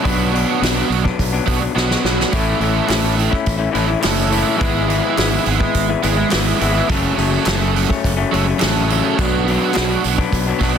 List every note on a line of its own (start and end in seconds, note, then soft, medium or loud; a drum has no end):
0.02 0.43 B1 medium
0.02 0.31 B2 medium
0.02 0.32 F#3 medium
0.02 0.33 B3 medium
0.02 0.33 D4 loud
0.02 0.44 F#4 medium
0.02 kick loud
0.02 open hi-hat medium
0.32 0.60 B2 medium
0.32 0.61 F#3 medium
0.32 0.61 B3 medium
0.32 0.61 D4 medium
0.32 open hi-hat medium
0.45 0.61 B3 medium
0.45 0.61 D4 medium
0.45 0.62 F#4 medium
0.61 0.81 B1 medium
0.61 0.89 B2 medium
0.61 0.75 F#3 medium
0.61 0.74 B3 medium
0.61 0.73 D4 medium
0.61 0.74 F#4 medium
0.61 snare loud
0.61 open hi-hat medium
0.75 0.89 F#3 medium
0.75 0.89 B3 medium
0.75 0.89 D4 medium
0.75 0.91 F#4 medium
0.89 1.09 B1 medium
0.89 1.03 F#3 medium
0.89 1.02 B3 medium
0.89 1.03 D4 medium
0.89 1.02 F#4 medium
0.89 muted clean electric guitar stroke soft
0.89 open hi-hat medium
1.03 1.33 F#3 medium
1.03 1.32 B3 medium
1.03 1.31 D4 medium
1.03 muted overdriven electric guitar stroke soft
1.03 kick medium
1.19 1.38 B1 medium
1.19 kick medium
1.19 open hi-hat medium
1.33 1.45 F#3 medium
1.33 1.46 B3 medium
1.33 1.47 D4 medium
1.46 1.67 B1 medium
1.46 1.73 B2 medium
1.46 1.62 F#3 medium
1.46 1.60 B3 medium
1.46 1.60 D4 medium
1.46 1.60 F#4 medium
1.46 kick medium
1.46 open hi-hat medium
1.61 1.74 F#3 medium
1.61 1.74 B3 medium
1.61 1.75 D4 medium
1.61 muted overdriven electric guitar stroke soft
1.75 1.95 B1 medium
1.75 2.02 B2 medium
1.75 1.90 F#3 medium
1.75 1.90 B3 medium
1.75 1.88 D4 medium
1.75 2.06 F#4 medium
1.75 snare medium
1.90 2.03 F#3 medium
1.90 2.03 B3 medium
1.90 2.04 D4 medium
1.90 snare medium
2.04 2.23 B1 medium
2.04 2.31 B2 medium
2.04 2.31 F#3 medium
2.04 2.31 B3 medium
2.04 2.32 D4 medium
2.04 2.17 F#4 medium
2.04 snare medium
2.18 2.33 B3 medium
2.18 2.32 D4 soft
2.18 2.31 F#4 medium
2.18 snare medium
2.32 2.53 A1 medium
2.32 2.86 A2 medium
2.32 2.60 E3 medium
2.32 2.60 A3 loud
2.32 2.60 C#4 medium
2.32 2.62 E4 loud
2.32 2.73 A4 medium
2.32 kick loud
2.32 open hi-hat medium
2.60 2.80 A1 medium
2.60 2.87 E3 medium
2.60 2.87 A3 medium
2.60 2.87 C#4 medium
2.60 2.89 E4 medium
2.60 open hi-hat soft
2.74 2.90 A3 soft
2.74 2.90 C#4 medium
2.74 2.90 A4 medium
2.87 3.28 A1 medium
2.87 3.31 A2 medium
2.87 3.16 E3 medium
2.87 3.04 A3 medium
2.87 3.02 C#4 medium
2.87 3.03 E4 medium
2.87 snare loud
2.87 clap medium
2.87 open hi-hat medium
2.92 3.03 A4 medium
3.03 3.15 A3 soft
3.03 3.16 C#4 medium
3.03 3.17 E4 medium
3.03 3.20 A4 medium
3.16 3.33 E3 medium
3.16 3.33 A3 medium
3.16 muted clean electric guitar stroke soft
3.16 open hi-hat soft
3.21 3.32 C#4 medium
3.21 3.32 A4 medium
3.30 3.58 A3 medium
3.30 3.57 C#4 medium
3.30 3.56 E4 medium
3.30 muted overdriven electric guitar stroke medium
3.30 kick medium
3.46 3.66 A1 medium
3.46 kick medium
3.46 open hi-hat medium
3.58 3.71 A3 medium
3.58 3.71 C#4 medium
3.58 3.72 E4 medium
3.71 3.94 A1 medium
3.71 4.00 E3 medium
3.71 3.88 A3 medium
3.71 3.87 C#4 medium
3.71 3.86 E4 medium
3.71 open hi-hat medium
3.77 3.88 C#4 medium
3.77 3.88 A4 medium
3.87 4.00 A3 medium
3.87 4.00 C#4 medium
3.87 4.01 E4 medium
3.87 muted overdriven electric guitar stroke medium
4.00 4.45 A2 medium
4.00 4.29 E3 medium
4.00 4.17 A3 loud
4.00 4.16 C#4 loud
4.00 4.14 E4 medium
4.00 snare loud
4.00 clap medium
4.00 open hi-hat medium
4.04 4.42 F#1 medium
4.04 4.33 A4 loud
4.16 4.29 A3 medium
4.16 4.30 C#4 medium
4.16 4.31 E4 medium
4.30 4.56 E3 medium
4.30 4.58 A3 medium
4.30 4.58 C#4 medium
4.30 4.57 E4 medium
4.30 open hi-hat medium
4.34 4.43 A4 medium
4.45 4.60 A3 medium
4.45 4.59 C#4 medium
4.45 4.58 A4 medium
4.57 5.15 G#2 medium
4.57 4.86 E3 loud
4.57 4.86 G#3 medium
4.57 4.87 B3 loud
4.57 4.88 E4 loud
4.61 5.00 G#1 loud
4.61 5.01 G#4 loud
4.61 kick loud
4.61 open hi-hat medium
4.87 5.16 E3 medium
4.87 5.16 G#3 medium
4.87 5.16 B3 medium
4.87 5.17 E4 medium
4.87 open hi-hat medium
5.02 5.16 B3 medium
5.02 5.17 E4 medium
5.02 5.18 G#4 medium
5.16 5.37 G#1 medium
5.16 5.60 G#2 medium
5.16 5.44 E3 medium
5.16 5.31 G#3 loud
5.16 5.31 B3 medium
5.16 5.29 E4 medium
5.16 5.30 G#4 medium
5.16 snare loud
5.16 clap medium
5.16 open hi-hat medium
5.31 5.44 G#3 soft
5.31 5.45 B3 medium
5.31 5.45 E4 medium
5.31 5.47 G#4 medium
5.45 5.66 G#1 medium
5.45 5.89 G#3 medium
5.45 5.60 B3 medium
5.45 5.59 E4 medium
5.45 5.59 G#4 medium
5.45 muted clean electric guitar stroke soft
5.45 open hi-hat medium
5.58 5.89 G#3 medium
5.58 5.88 B3 medium
5.58 5.88 E4 medium
5.58 muted overdriven electric guitar stroke medium
5.58 kick medium
5.74 5.94 G#1 medium
5.74 kick medium
5.74 open hi-hat medium
5.89 6.02 G#3 medium
5.89 6.03 B3 medium
5.89 6.03 E4 medium
6.02 6.23 G#1 medium
6.02 6.30 E3 medium
6.02 6.17 G#3 medium
6.02 6.16 B3 medium
6.02 6.15 E4 medium
6.02 6.16 G#4 medium
6.02 open hi-hat medium
6.16 6.30 G#3 medium
6.16 6.30 B3 medium
6.16 6.31 E4 medium
6.16 muted overdriven electric guitar stroke medium
6.30 6.52 G#1 medium
6.30 6.74 G#2 medium
6.30 6.58 E3 medium
6.30 6.45 G#3 loud
6.30 6.44 B3 loud
6.30 6.43 E4 loud
6.30 6.60 G#4 medium
6.30 snare loud
6.30 clap medium
6.30 open hi-hat medium
6.45 6.59 G#3 medium
6.45 6.60 B3 medium
6.45 6.60 E4 medium
6.59 6.80 G#1 medium
6.59 6.87 E3 medium
6.59 6.87 G#3 medium
6.59 6.88 B3 medium
6.59 6.88 E4 medium
6.59 6.72 G#4 medium
6.59 open hi-hat medium
6.73 6.88 B3 soft
6.73 6.87 E4 medium
6.73 6.87 G#4 medium
6.89 7.09 F#1 loud
6.89 7.44 F#2 medium
6.89 7.15 C#3 loud
6.89 7.17 F#3 medium
6.89 7.17 A3 loud
6.89 7.18 C#4 loud
6.89 7.30 A4 medium
6.89 kick loud
6.89 open hi-hat medium
7.16 7.37 F#1 medium
7.16 7.45 C#3 medium
7.16 7.45 F#3 medium
7.16 7.45 A3 medium
7.16 7.46 C#4 medium
7.16 open hi-hat medium
7.31 7.46 F#3 medium
7.31 7.46 A3 medium
7.31 7.47 C#4 medium
7.31 7.47 A4 medium
7.45 7.85 F#1 loud
7.45 7.88 F#2 loud
7.45 7.72 C#3 medium
7.45 7.61 F#3 medium
7.45 7.59 A3 medium
7.45 7.58 C#4 loud
7.45 7.59 A4 loud
7.45 snare loud
7.45 clap loud
7.45 open hi-hat medium
7.59 7.74 F#3 medium
7.59 7.72 A3 medium
7.59 7.73 C#4 medium
7.59 7.76 A4 medium
7.73 7.88 F#3 medium
7.73 7.88 A3 medium
7.73 7.88 C#4 medium
7.73 7.87 A4 medium
7.73 muted clean electric guitar stroke soft
7.73 open hi-hat medium
7.88 8.17 F#3 medium
7.88 8.16 A3 medium
7.88 8.15 C#4 medium
7.88 muted overdriven electric guitar stroke medium
7.88 kick medium
8.04 8.24 F#1 medium
8.04 kick medium
8.04 open hi-hat medium
8.17 8.32 F#3 medium
8.17 8.33 A3 medium
8.17 8.32 C#4 medium
8.32 8.52 F#1 loud
8.32 8.59 C#3 medium
8.32 8.48 F#3 medium
8.32 8.47 A3 medium
8.32 8.46 C#4 medium
8.32 8.44 A4 medium
8.32 open hi-hat medium
8.45 8.59 F#3 medium
8.45 8.60 A3 medium
8.45 8.60 C#4 medium
8.45 muted overdriven electric guitar stroke soft
8.60 9.00 A1 medium
8.60 9.03 F#2 medium
8.60 8.88 C#3 medium
8.60 8.77 F#3 medium
8.60 8.76 A3 loud
8.60 8.74 C#4 medium
8.60 8.90 A4 loud
8.60 snare loud
8.60 clap medium
8.60 open hi-hat medium
8.75 8.89 F#3 medium
8.75 8.89 A3 medium
8.75 8.90 C#4 medium
8.89 9.16 C#3 medium
8.89 9.17 F#3 medium
8.89 9.17 A3 medium
8.89 9.17 C#4 medium
8.89 9.00 A4 medium
8.89 open hi-hat medium
9.02 9.16 F#3 medium
9.02 9.16 A3 medium
9.02 9.16 C#4 medium
9.02 9.15 A4 medium
9.19 9.57 B1 loud
9.19 9.46 B2 loud
9.19 9.47 F#3 loud
9.19 9.48 B3 loud
9.19 9.49 D4 loud
9.19 9.58 F#4 medium
9.19 kick loud
9.19 open hi-hat medium
9.47 9.72 B2 medium
9.47 9.73 F#3 medium
9.47 9.73 B3 medium
9.47 9.74 D4 medium
9.47 open hi-hat medium
9.60 9.74 B3 medium
9.60 9.75 D4 medium
9.60 9.76 F#4 medium
9.73 10.02 B2 medium
9.73 9.88 F#3 loud
9.73 9.88 B3 loud
9.73 9.87 D4 loud
9.73 9.88 F#4 medium
9.73 snare loud
9.73 clap medium
9.73 open hi-hat medium
9.78 9.96 B1 loud
9.88 10.03 F#3 medium
9.88 10.03 B3 medium
9.88 10.03 D4 medium
9.88 10.04 F#4 medium
10.03 10.23 B1 medium
10.03 10.18 F#3 medium
10.03 10.17 B3 medium
10.03 10.17 D4 medium
10.03 10.17 F#4 medium
10.03 muted clean electric guitar stroke soft
10.03 open hi-hat medium
10.18 10.47 F#3 medium
10.18 10.47 B3 medium
10.18 10.46 D4 medium
10.18 muted overdriven electric guitar stroke medium
10.18 kick medium
10.33 10.52 B1 medium
10.33 kick medium
10.33 open hi-hat medium
10.47 10.60 F#3 medium
10.47 10.61 B3 medium
10.47 10.61 D4 medium
10.60 10.78 B1 medium
10.60 10.78 B2 medium
10.60 10.76 F#3 medium
10.60 10.74 B3 medium
10.60 10.74 D4 medium
10.60 10.74 F#4 medium
10.60 kick medium
10.60 open hi-hat medium
10.75 10.78 D4 medium